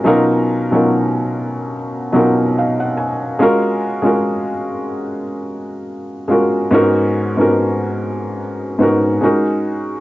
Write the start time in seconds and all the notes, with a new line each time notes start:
0.04 B2 F#3 C#4 D#4 F4 A#4
0.71 B2 F#3 C#4 D#4 F4
0.75 A#4
2.12 B2 F#3 C#4 D#4 F4 A#4 D#5
2.58 F5
2.80 F#5
2.97 G#5
3.39 G#3 C#4 F4 F#4 A#4
4.02 G#3 C#4 F4 F#4
4.06 A#4
6.28 G#3 C#4 F4 F#4
6.32 A#4
6.71 G#2 B3 C#4 D#4 F#4 A#4
7.37 G#2 B3 C#4 D#4 F#4 A#4
8.79 G#2 B3 C#4 D#4 F#4
8.83 A#4
9.21 G#3 C#4 D#4 F#4 A#4